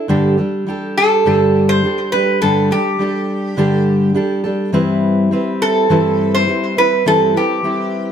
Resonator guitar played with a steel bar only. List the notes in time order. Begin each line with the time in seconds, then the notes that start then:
0.98 A4
1.69 C5
2.12 B4
2.42 A4
2.72 G4
5.62 A4
6.35 C5
6.78 B4
7.08 A4
7.37 G4